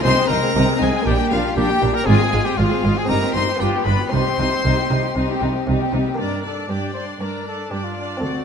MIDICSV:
0, 0, Header, 1, 8, 480
1, 0, Start_track
1, 0, Key_signature, -3, "minor"
1, 0, Tempo, 506329
1, 52, Time_signature, 4, 2, 24, 8
1, 2932, Tempo, 512821
1, 7942, End_track
2, 0, Start_track
2, 0, Title_t, "Violin section"
2, 0, Program_c, 0, 48
2, 38, Note_on_c, 0, 84, 127
2, 276, Note_on_c, 0, 82, 122
2, 279, Note_off_c, 0, 84, 0
2, 752, Note_off_c, 0, 82, 0
2, 765, Note_on_c, 0, 80, 104
2, 1006, Note_off_c, 0, 80, 0
2, 1013, Note_on_c, 0, 79, 114
2, 1244, Note_on_c, 0, 77, 99
2, 1250, Note_off_c, 0, 79, 0
2, 1480, Note_off_c, 0, 77, 0
2, 1494, Note_on_c, 0, 79, 113
2, 1843, Note_off_c, 0, 79, 0
2, 1856, Note_on_c, 0, 82, 100
2, 1968, Note_on_c, 0, 80, 115
2, 1970, Note_off_c, 0, 82, 0
2, 2321, Note_off_c, 0, 80, 0
2, 2331, Note_on_c, 0, 79, 98
2, 2431, Note_on_c, 0, 77, 91
2, 2450, Note_off_c, 0, 79, 0
2, 2802, Note_off_c, 0, 77, 0
2, 2806, Note_on_c, 0, 80, 93
2, 2924, Note_on_c, 0, 82, 107
2, 2929, Note_off_c, 0, 80, 0
2, 3162, Note_off_c, 0, 82, 0
2, 3173, Note_on_c, 0, 84, 104
2, 3406, Note_on_c, 0, 79, 86
2, 3407, Note_off_c, 0, 84, 0
2, 3481, Note_off_c, 0, 79, 0
2, 3642, Note_on_c, 0, 83, 87
2, 3881, Note_on_c, 0, 84, 119
2, 3886, Note_off_c, 0, 83, 0
2, 5312, Note_off_c, 0, 84, 0
2, 5846, Note_on_c, 0, 82, 49
2, 6062, Note_off_c, 0, 82, 0
2, 6086, Note_on_c, 0, 81, 52
2, 6313, Note_off_c, 0, 81, 0
2, 6321, Note_on_c, 0, 79, 43
2, 6554, Note_off_c, 0, 79, 0
2, 6555, Note_on_c, 0, 84, 49
2, 6789, Note_off_c, 0, 84, 0
2, 6801, Note_on_c, 0, 82, 46
2, 7026, Note_off_c, 0, 82, 0
2, 7035, Note_on_c, 0, 81, 49
2, 7266, Note_off_c, 0, 81, 0
2, 7275, Note_on_c, 0, 79, 44
2, 7386, Note_off_c, 0, 79, 0
2, 7400, Note_on_c, 0, 77, 45
2, 7738, Note_off_c, 0, 77, 0
2, 7764, Note_on_c, 0, 78, 54
2, 7942, Note_off_c, 0, 78, 0
2, 7942, End_track
3, 0, Start_track
3, 0, Title_t, "Trumpet"
3, 0, Program_c, 1, 56
3, 30, Note_on_c, 1, 72, 95
3, 267, Note_on_c, 1, 70, 91
3, 281, Note_off_c, 1, 72, 0
3, 757, Note_off_c, 1, 70, 0
3, 771, Note_on_c, 1, 68, 91
3, 1001, Note_off_c, 1, 68, 0
3, 1007, Note_on_c, 1, 67, 86
3, 1115, Note_off_c, 1, 67, 0
3, 1250, Note_on_c, 1, 65, 83
3, 1479, Note_off_c, 1, 65, 0
3, 1485, Note_on_c, 1, 67, 94
3, 1844, Note_on_c, 1, 70, 94
3, 1858, Note_off_c, 1, 67, 0
3, 1954, Note_on_c, 1, 68, 97
3, 1968, Note_off_c, 1, 70, 0
3, 2322, Note_on_c, 1, 67, 85
3, 2337, Note_off_c, 1, 68, 0
3, 2442, Note_on_c, 1, 65, 89
3, 2456, Note_off_c, 1, 67, 0
3, 2826, Note_on_c, 1, 68, 79
3, 2840, Note_off_c, 1, 65, 0
3, 2934, Note_on_c, 1, 70, 78
3, 2948, Note_off_c, 1, 68, 0
3, 3166, Note_off_c, 1, 70, 0
3, 3172, Note_on_c, 1, 72, 77
3, 3416, Note_on_c, 1, 67, 78
3, 3430, Note_off_c, 1, 72, 0
3, 3656, Note_on_c, 1, 71, 77
3, 3670, Note_off_c, 1, 67, 0
3, 3898, Note_off_c, 1, 71, 0
3, 3902, Note_on_c, 1, 72, 86
3, 5322, Note_off_c, 1, 72, 0
3, 5833, Note_on_c, 1, 70, 54
3, 6055, Note_off_c, 1, 70, 0
3, 6082, Note_on_c, 1, 69, 52
3, 6292, Note_off_c, 1, 69, 0
3, 6298, Note_on_c, 1, 67, 63
3, 6524, Note_off_c, 1, 67, 0
3, 6529, Note_on_c, 1, 72, 51
3, 6641, Note_off_c, 1, 72, 0
3, 6778, Note_on_c, 1, 70, 50
3, 7014, Note_off_c, 1, 70, 0
3, 7031, Note_on_c, 1, 69, 60
3, 7251, Note_on_c, 1, 67, 57
3, 7265, Note_off_c, 1, 69, 0
3, 7377, Note_on_c, 1, 65, 51
3, 7391, Note_off_c, 1, 67, 0
3, 7741, Note_on_c, 1, 66, 60
3, 7755, Note_off_c, 1, 65, 0
3, 7942, Note_off_c, 1, 66, 0
3, 7942, End_track
4, 0, Start_track
4, 0, Title_t, "Violin section"
4, 0, Program_c, 2, 48
4, 41, Note_on_c, 2, 63, 74
4, 157, Note_off_c, 2, 63, 0
4, 161, Note_on_c, 2, 60, 65
4, 281, Note_on_c, 2, 63, 72
4, 285, Note_off_c, 2, 60, 0
4, 404, Note_on_c, 2, 60, 75
4, 405, Note_off_c, 2, 63, 0
4, 526, Note_on_c, 2, 63, 68
4, 527, Note_off_c, 2, 60, 0
4, 639, Note_off_c, 2, 63, 0
4, 646, Note_on_c, 2, 60, 63
4, 767, Note_off_c, 2, 60, 0
4, 769, Note_on_c, 2, 63, 64
4, 888, Note_on_c, 2, 60, 73
4, 889, Note_off_c, 2, 63, 0
4, 1006, Note_on_c, 2, 62, 63
4, 1008, Note_off_c, 2, 60, 0
4, 1118, Note_off_c, 2, 62, 0
4, 1129, Note_on_c, 2, 67, 69
4, 1248, Note_off_c, 2, 67, 0
4, 1260, Note_on_c, 2, 62, 60
4, 1373, Note_on_c, 2, 67, 65
4, 1374, Note_off_c, 2, 62, 0
4, 1489, Note_on_c, 2, 62, 67
4, 1490, Note_off_c, 2, 67, 0
4, 1600, Note_off_c, 2, 62, 0
4, 1607, Note_on_c, 2, 67, 60
4, 1721, Note_on_c, 2, 62, 68
4, 1727, Note_off_c, 2, 67, 0
4, 1843, Note_on_c, 2, 67, 60
4, 1844, Note_off_c, 2, 62, 0
4, 1964, Note_on_c, 2, 65, 79
4, 1965, Note_off_c, 2, 67, 0
4, 2077, Note_off_c, 2, 65, 0
4, 2078, Note_on_c, 2, 68, 62
4, 2203, Note_off_c, 2, 68, 0
4, 2209, Note_on_c, 2, 65, 61
4, 2322, Note_on_c, 2, 68, 66
4, 2329, Note_off_c, 2, 65, 0
4, 2446, Note_off_c, 2, 68, 0
4, 2446, Note_on_c, 2, 65, 62
4, 2560, Note_off_c, 2, 65, 0
4, 2565, Note_on_c, 2, 68, 54
4, 2685, Note_on_c, 2, 65, 60
4, 2688, Note_off_c, 2, 68, 0
4, 2808, Note_off_c, 2, 65, 0
4, 2812, Note_on_c, 2, 68, 68
4, 2932, Note_off_c, 2, 68, 0
4, 2933, Note_on_c, 2, 63, 54
4, 3043, Note_off_c, 2, 63, 0
4, 3062, Note_on_c, 2, 67, 62
4, 3176, Note_off_c, 2, 67, 0
4, 3192, Note_on_c, 2, 63, 59
4, 3301, Note_off_c, 2, 63, 0
4, 3302, Note_on_c, 2, 67, 53
4, 3417, Note_off_c, 2, 67, 0
4, 3421, Note_on_c, 2, 65, 63
4, 3529, Note_off_c, 2, 65, 0
4, 3547, Note_on_c, 2, 67, 55
4, 3661, Note_off_c, 2, 67, 0
4, 3667, Note_on_c, 2, 65, 57
4, 3781, Note_off_c, 2, 65, 0
4, 3784, Note_on_c, 2, 67, 50
4, 3902, Note_off_c, 2, 67, 0
4, 3913, Note_on_c, 2, 63, 55
4, 4019, Note_off_c, 2, 63, 0
4, 4039, Note_on_c, 2, 67, 54
4, 4151, Note_off_c, 2, 67, 0
4, 4159, Note_on_c, 2, 63, 57
4, 4271, Note_off_c, 2, 63, 0
4, 4281, Note_on_c, 2, 67, 50
4, 4393, Note_off_c, 2, 67, 0
4, 4403, Note_on_c, 2, 63, 62
4, 4507, Note_off_c, 2, 63, 0
4, 4528, Note_on_c, 2, 67, 50
4, 4634, Note_on_c, 2, 63, 54
4, 4637, Note_off_c, 2, 67, 0
4, 4750, Note_off_c, 2, 63, 0
4, 4763, Note_on_c, 2, 67, 56
4, 4875, Note_off_c, 2, 67, 0
4, 4876, Note_on_c, 2, 63, 55
4, 4984, Note_off_c, 2, 63, 0
4, 5000, Note_on_c, 2, 67, 61
4, 5114, Note_off_c, 2, 67, 0
4, 5116, Note_on_c, 2, 63, 54
4, 5228, Note_on_c, 2, 67, 51
4, 5232, Note_off_c, 2, 63, 0
4, 5349, Note_off_c, 2, 67, 0
4, 5351, Note_on_c, 2, 63, 55
4, 5463, Note_off_c, 2, 63, 0
4, 5471, Note_on_c, 2, 67, 57
4, 5590, Note_on_c, 2, 63, 52
4, 5592, Note_off_c, 2, 67, 0
4, 5709, Note_on_c, 2, 67, 47
4, 5712, Note_off_c, 2, 63, 0
4, 5831, Note_off_c, 2, 67, 0
4, 5835, Note_on_c, 2, 74, 46
4, 6056, Note_off_c, 2, 74, 0
4, 6068, Note_on_c, 2, 74, 36
4, 6303, Note_off_c, 2, 74, 0
4, 6320, Note_on_c, 2, 74, 41
4, 6545, Note_off_c, 2, 74, 0
4, 6557, Note_on_c, 2, 74, 32
4, 6772, Note_off_c, 2, 74, 0
4, 6783, Note_on_c, 2, 74, 34
4, 7013, Note_off_c, 2, 74, 0
4, 7025, Note_on_c, 2, 74, 35
4, 7256, Note_off_c, 2, 74, 0
4, 7268, Note_on_c, 2, 74, 42
4, 7487, Note_off_c, 2, 74, 0
4, 7498, Note_on_c, 2, 74, 40
4, 7722, Note_off_c, 2, 74, 0
4, 7733, Note_on_c, 2, 74, 39
4, 7942, Note_off_c, 2, 74, 0
4, 7942, End_track
5, 0, Start_track
5, 0, Title_t, "Viola section"
5, 0, Program_c, 3, 48
5, 37, Note_on_c, 3, 60, 77
5, 149, Note_on_c, 3, 56, 64
5, 155, Note_off_c, 3, 60, 0
5, 260, Note_on_c, 3, 60, 71
5, 279, Note_off_c, 3, 56, 0
5, 394, Note_on_c, 3, 56, 73
5, 395, Note_off_c, 3, 60, 0
5, 501, Note_on_c, 3, 60, 66
5, 522, Note_off_c, 3, 56, 0
5, 626, Note_off_c, 3, 60, 0
5, 631, Note_on_c, 3, 56, 66
5, 746, Note_on_c, 3, 60, 59
5, 760, Note_off_c, 3, 56, 0
5, 873, Note_on_c, 3, 56, 59
5, 877, Note_off_c, 3, 60, 0
5, 993, Note_on_c, 3, 55, 62
5, 1000, Note_off_c, 3, 56, 0
5, 1111, Note_off_c, 3, 55, 0
5, 1114, Note_on_c, 3, 58, 69
5, 1230, Note_on_c, 3, 55, 65
5, 1241, Note_off_c, 3, 58, 0
5, 1358, Note_off_c, 3, 55, 0
5, 1360, Note_on_c, 3, 58, 58
5, 1467, Note_on_c, 3, 55, 69
5, 1484, Note_off_c, 3, 58, 0
5, 1586, Note_on_c, 3, 58, 57
5, 1588, Note_off_c, 3, 55, 0
5, 1716, Note_on_c, 3, 55, 62
5, 1717, Note_off_c, 3, 58, 0
5, 1834, Note_on_c, 3, 58, 55
5, 1841, Note_off_c, 3, 55, 0
5, 1949, Note_on_c, 3, 56, 73
5, 1961, Note_off_c, 3, 58, 0
5, 2069, Note_off_c, 3, 56, 0
5, 2080, Note_on_c, 3, 60, 65
5, 2199, Note_on_c, 3, 56, 65
5, 2204, Note_off_c, 3, 60, 0
5, 2323, Note_on_c, 3, 60, 64
5, 2324, Note_off_c, 3, 56, 0
5, 2445, Note_on_c, 3, 56, 65
5, 2446, Note_off_c, 3, 60, 0
5, 2559, Note_off_c, 3, 56, 0
5, 2568, Note_on_c, 3, 60, 60
5, 2685, Note_on_c, 3, 56, 55
5, 2689, Note_off_c, 3, 60, 0
5, 2808, Note_off_c, 3, 56, 0
5, 2810, Note_on_c, 3, 60, 56
5, 2931, Note_off_c, 3, 60, 0
5, 2933, Note_on_c, 3, 55, 62
5, 3043, Note_off_c, 3, 55, 0
5, 3049, Note_on_c, 3, 60, 58
5, 3170, Note_off_c, 3, 60, 0
5, 3170, Note_on_c, 3, 55, 62
5, 3282, Note_on_c, 3, 60, 53
5, 3290, Note_off_c, 3, 55, 0
5, 3407, Note_off_c, 3, 60, 0
5, 3407, Note_on_c, 3, 62, 57
5, 3521, Note_off_c, 3, 62, 0
5, 3527, Note_on_c, 3, 59, 54
5, 3644, Note_on_c, 3, 62, 49
5, 3650, Note_off_c, 3, 59, 0
5, 3763, Note_on_c, 3, 59, 54
5, 3770, Note_off_c, 3, 62, 0
5, 3890, Note_on_c, 3, 55, 58
5, 3891, Note_off_c, 3, 59, 0
5, 4007, Note_off_c, 3, 55, 0
5, 4017, Note_on_c, 3, 60, 59
5, 4140, Note_off_c, 3, 60, 0
5, 4140, Note_on_c, 3, 55, 53
5, 4262, Note_off_c, 3, 55, 0
5, 4264, Note_on_c, 3, 60, 54
5, 4381, Note_on_c, 3, 55, 64
5, 4384, Note_off_c, 3, 60, 0
5, 4495, Note_off_c, 3, 55, 0
5, 4496, Note_on_c, 3, 60, 50
5, 4617, Note_on_c, 3, 55, 45
5, 4621, Note_off_c, 3, 60, 0
5, 4737, Note_on_c, 3, 60, 48
5, 4742, Note_off_c, 3, 55, 0
5, 4861, Note_on_c, 3, 55, 56
5, 4862, Note_off_c, 3, 60, 0
5, 4976, Note_off_c, 3, 55, 0
5, 4990, Note_on_c, 3, 60, 61
5, 5101, Note_on_c, 3, 55, 52
5, 5109, Note_off_c, 3, 60, 0
5, 5225, Note_off_c, 3, 55, 0
5, 5227, Note_on_c, 3, 60, 44
5, 5348, Note_off_c, 3, 60, 0
5, 5353, Note_on_c, 3, 55, 52
5, 5463, Note_off_c, 3, 55, 0
5, 5475, Note_on_c, 3, 60, 50
5, 5594, Note_off_c, 3, 60, 0
5, 5597, Note_on_c, 3, 55, 54
5, 5712, Note_on_c, 3, 60, 52
5, 5715, Note_off_c, 3, 55, 0
5, 5830, Note_on_c, 3, 62, 41
5, 5832, Note_off_c, 3, 60, 0
5, 6062, Note_off_c, 3, 62, 0
5, 6073, Note_on_c, 3, 62, 37
5, 6293, Note_off_c, 3, 62, 0
5, 6305, Note_on_c, 3, 62, 36
5, 6537, Note_off_c, 3, 62, 0
5, 6548, Note_on_c, 3, 62, 33
5, 6781, Note_off_c, 3, 62, 0
5, 6793, Note_on_c, 3, 62, 37
5, 7016, Note_off_c, 3, 62, 0
5, 7027, Note_on_c, 3, 62, 35
5, 7248, Note_off_c, 3, 62, 0
5, 7259, Note_on_c, 3, 62, 39
5, 7492, Note_off_c, 3, 62, 0
5, 7505, Note_on_c, 3, 62, 36
5, 7733, Note_on_c, 3, 60, 43
5, 7734, Note_off_c, 3, 62, 0
5, 7942, Note_off_c, 3, 60, 0
5, 7942, End_track
6, 0, Start_track
6, 0, Title_t, "Harpsichord"
6, 0, Program_c, 4, 6
6, 18, Note_on_c, 4, 56, 64
6, 31, Note_on_c, 4, 63, 66
6, 47, Note_on_c, 4, 68, 67
6, 63, Note_on_c, 4, 48, 67
6, 273, Note_off_c, 4, 48, 0
6, 299, Note_on_c, 4, 48, 64
6, 511, Note_off_c, 4, 48, 0
6, 537, Note_on_c, 4, 48, 75
6, 749, Note_off_c, 4, 48, 0
6, 783, Note_on_c, 4, 48, 71
6, 962, Note_off_c, 4, 56, 0
6, 969, Note_off_c, 4, 63, 0
6, 969, Note_on_c, 4, 58, 66
6, 977, Note_off_c, 4, 68, 0
6, 986, Note_on_c, 4, 62, 67
6, 992, Note_off_c, 4, 48, 0
6, 1003, Note_on_c, 4, 67, 68
6, 1016, Note_on_c, 4, 46, 72
6, 1228, Note_off_c, 4, 46, 0
6, 1254, Note_on_c, 4, 46, 65
6, 1467, Note_off_c, 4, 46, 0
6, 1488, Note_on_c, 4, 46, 69
6, 1703, Note_off_c, 4, 46, 0
6, 1736, Note_on_c, 4, 46, 65
6, 1918, Note_off_c, 4, 58, 0
6, 1927, Note_off_c, 4, 62, 0
6, 1932, Note_on_c, 4, 60, 57
6, 1935, Note_off_c, 4, 67, 0
6, 1948, Note_off_c, 4, 46, 0
6, 1951, Note_on_c, 4, 65, 53
6, 1973, Note_on_c, 4, 44, 64
6, 2187, Note_off_c, 4, 44, 0
6, 2218, Note_on_c, 4, 44, 60
6, 2430, Note_off_c, 4, 44, 0
6, 2459, Note_on_c, 4, 44, 70
6, 2672, Note_off_c, 4, 44, 0
6, 2698, Note_on_c, 4, 44, 62
6, 2882, Note_off_c, 4, 60, 0
6, 2893, Note_on_c, 4, 60, 58
6, 2894, Note_off_c, 4, 65, 0
6, 2901, Note_on_c, 4, 63, 60
6, 2912, Note_off_c, 4, 44, 0
6, 2923, Note_on_c, 4, 67, 59
6, 2933, Note_on_c, 4, 43, 63
6, 3147, Note_off_c, 4, 43, 0
6, 3175, Note_on_c, 4, 43, 60
6, 3369, Note_on_c, 4, 59, 53
6, 3377, Note_off_c, 4, 60, 0
6, 3381, Note_off_c, 4, 63, 0
6, 3382, Note_on_c, 4, 65, 55
6, 3385, Note_off_c, 4, 67, 0
6, 3389, Note_off_c, 4, 43, 0
6, 3396, Note_on_c, 4, 67, 49
6, 3413, Note_on_c, 4, 43, 56
6, 3630, Note_off_c, 4, 43, 0
6, 3656, Note_on_c, 4, 43, 61
6, 3861, Note_off_c, 4, 59, 0
6, 3865, Note_on_c, 4, 60, 46
6, 3868, Note_off_c, 4, 65, 0
6, 3873, Note_on_c, 4, 63, 57
6, 3874, Note_off_c, 4, 43, 0
6, 3875, Note_off_c, 4, 67, 0
6, 3889, Note_on_c, 4, 67, 50
6, 3904, Note_on_c, 4, 48, 57
6, 4120, Note_off_c, 4, 48, 0
6, 4151, Note_on_c, 4, 48, 55
6, 4365, Note_off_c, 4, 48, 0
6, 4386, Note_on_c, 4, 48, 55
6, 4603, Note_off_c, 4, 48, 0
6, 4628, Note_on_c, 4, 48, 52
6, 4844, Note_off_c, 4, 48, 0
6, 4864, Note_on_c, 4, 48, 56
6, 5082, Note_off_c, 4, 48, 0
6, 5104, Note_on_c, 4, 48, 49
6, 5323, Note_off_c, 4, 48, 0
6, 5345, Note_on_c, 4, 48, 55
6, 5565, Note_off_c, 4, 48, 0
6, 5592, Note_on_c, 4, 48, 48
6, 5779, Note_off_c, 4, 60, 0
6, 5783, Note_off_c, 4, 63, 0
6, 5789, Note_on_c, 4, 58, 33
6, 5791, Note_off_c, 4, 67, 0
6, 5801, Note_on_c, 4, 62, 33
6, 5809, Note_off_c, 4, 48, 0
6, 5816, Note_on_c, 4, 67, 34
6, 5830, Note_on_c, 4, 43, 34
6, 6224, Note_off_c, 4, 43, 0
6, 6302, Note_on_c, 4, 43, 36
6, 6697, Note_off_c, 4, 43, 0
6, 6783, Note_on_c, 4, 43, 39
6, 7174, Note_off_c, 4, 43, 0
6, 7257, Note_on_c, 4, 43, 32
6, 7648, Note_off_c, 4, 43, 0
6, 7676, Note_off_c, 4, 58, 0
6, 7682, Note_off_c, 4, 62, 0
6, 7686, Note_on_c, 4, 60, 35
6, 7689, Note_off_c, 4, 67, 0
6, 7704, Note_on_c, 4, 62, 32
6, 7716, Note_on_c, 4, 69, 33
6, 7731, Note_on_c, 4, 38, 40
6, 7942, Note_off_c, 4, 38, 0
6, 7942, Note_off_c, 4, 60, 0
6, 7942, Note_off_c, 4, 62, 0
6, 7942, Note_off_c, 4, 69, 0
6, 7942, End_track
7, 0, Start_track
7, 0, Title_t, "Cello section"
7, 0, Program_c, 5, 48
7, 44, Note_on_c, 5, 48, 85
7, 120, Note_off_c, 5, 48, 0
7, 281, Note_on_c, 5, 48, 76
7, 357, Note_off_c, 5, 48, 0
7, 528, Note_on_c, 5, 48, 91
7, 604, Note_off_c, 5, 48, 0
7, 768, Note_on_c, 5, 48, 81
7, 844, Note_off_c, 5, 48, 0
7, 1003, Note_on_c, 5, 46, 82
7, 1079, Note_off_c, 5, 46, 0
7, 1243, Note_on_c, 5, 46, 75
7, 1319, Note_off_c, 5, 46, 0
7, 1484, Note_on_c, 5, 46, 84
7, 1560, Note_off_c, 5, 46, 0
7, 1728, Note_on_c, 5, 46, 75
7, 1804, Note_off_c, 5, 46, 0
7, 1974, Note_on_c, 5, 44, 86
7, 2050, Note_off_c, 5, 44, 0
7, 2207, Note_on_c, 5, 44, 75
7, 2283, Note_off_c, 5, 44, 0
7, 2444, Note_on_c, 5, 44, 80
7, 2519, Note_off_c, 5, 44, 0
7, 2689, Note_on_c, 5, 44, 73
7, 2765, Note_off_c, 5, 44, 0
7, 2928, Note_on_c, 5, 43, 64
7, 3003, Note_off_c, 5, 43, 0
7, 3171, Note_on_c, 5, 43, 66
7, 3246, Note_off_c, 5, 43, 0
7, 3402, Note_on_c, 5, 43, 69
7, 3477, Note_off_c, 5, 43, 0
7, 3650, Note_on_c, 5, 43, 67
7, 3725, Note_off_c, 5, 43, 0
7, 3894, Note_on_c, 5, 48, 79
7, 3969, Note_off_c, 5, 48, 0
7, 4141, Note_on_c, 5, 48, 66
7, 4216, Note_off_c, 5, 48, 0
7, 4387, Note_on_c, 5, 48, 66
7, 4461, Note_off_c, 5, 48, 0
7, 4626, Note_on_c, 5, 48, 69
7, 4701, Note_off_c, 5, 48, 0
7, 4860, Note_on_c, 5, 48, 64
7, 4935, Note_off_c, 5, 48, 0
7, 5101, Note_on_c, 5, 48, 63
7, 5176, Note_off_c, 5, 48, 0
7, 5349, Note_on_c, 5, 48, 72
7, 5424, Note_off_c, 5, 48, 0
7, 5595, Note_on_c, 5, 48, 66
7, 5670, Note_off_c, 5, 48, 0
7, 5830, Note_on_c, 5, 43, 51
7, 6231, Note_off_c, 5, 43, 0
7, 6306, Note_on_c, 5, 43, 51
7, 6706, Note_off_c, 5, 43, 0
7, 6775, Note_on_c, 5, 43, 46
7, 7177, Note_off_c, 5, 43, 0
7, 7251, Note_on_c, 5, 43, 50
7, 7653, Note_off_c, 5, 43, 0
7, 7728, Note_on_c, 5, 38, 49
7, 7942, Note_off_c, 5, 38, 0
7, 7942, End_track
8, 0, Start_track
8, 0, Title_t, "Double bass section"
8, 0, Program_c, 6, 48
8, 43, Note_on_c, 6, 36, 83
8, 119, Note_off_c, 6, 36, 0
8, 283, Note_on_c, 6, 36, 84
8, 359, Note_off_c, 6, 36, 0
8, 524, Note_on_c, 6, 36, 94
8, 599, Note_off_c, 6, 36, 0
8, 769, Note_on_c, 6, 36, 77
8, 845, Note_off_c, 6, 36, 0
8, 1013, Note_on_c, 6, 34, 92
8, 1089, Note_off_c, 6, 34, 0
8, 1250, Note_on_c, 6, 34, 74
8, 1326, Note_off_c, 6, 34, 0
8, 1486, Note_on_c, 6, 34, 75
8, 1562, Note_off_c, 6, 34, 0
8, 1728, Note_on_c, 6, 34, 74
8, 1804, Note_off_c, 6, 34, 0
8, 1970, Note_on_c, 6, 32, 85
8, 2046, Note_off_c, 6, 32, 0
8, 2211, Note_on_c, 6, 32, 67
8, 2287, Note_off_c, 6, 32, 0
8, 2449, Note_on_c, 6, 32, 89
8, 2525, Note_off_c, 6, 32, 0
8, 2687, Note_on_c, 6, 32, 70
8, 2763, Note_off_c, 6, 32, 0
8, 2936, Note_on_c, 6, 31, 80
8, 3011, Note_off_c, 6, 31, 0
8, 3173, Note_on_c, 6, 31, 62
8, 3248, Note_off_c, 6, 31, 0
8, 3409, Note_on_c, 6, 31, 57
8, 3484, Note_off_c, 6, 31, 0
8, 3657, Note_on_c, 6, 31, 63
8, 3732, Note_off_c, 6, 31, 0
8, 3899, Note_on_c, 6, 36, 71
8, 3974, Note_off_c, 6, 36, 0
8, 4146, Note_on_c, 6, 36, 68
8, 4221, Note_off_c, 6, 36, 0
8, 4385, Note_on_c, 6, 36, 78
8, 4460, Note_off_c, 6, 36, 0
8, 4628, Note_on_c, 6, 36, 61
8, 4703, Note_off_c, 6, 36, 0
8, 4868, Note_on_c, 6, 36, 65
8, 4943, Note_off_c, 6, 36, 0
8, 5113, Note_on_c, 6, 36, 57
8, 5188, Note_off_c, 6, 36, 0
8, 5356, Note_on_c, 6, 36, 62
8, 5431, Note_off_c, 6, 36, 0
8, 5591, Note_on_c, 6, 36, 64
8, 5666, Note_off_c, 6, 36, 0
8, 7942, End_track
0, 0, End_of_file